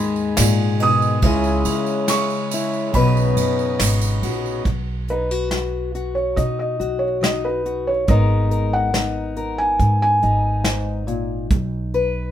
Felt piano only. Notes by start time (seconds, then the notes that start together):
Already playing: B5
0.83 D#6
2.09 C#6
2.94 B5
5.10 B4
6.15 C#5
6.36 D#5
6.59 D#5
6.99 C#5
7.23 D#5
7.45 B4
7.87 C#5
8.09 D#5
8.73 F#5
9.58 G#5
10.02 G#5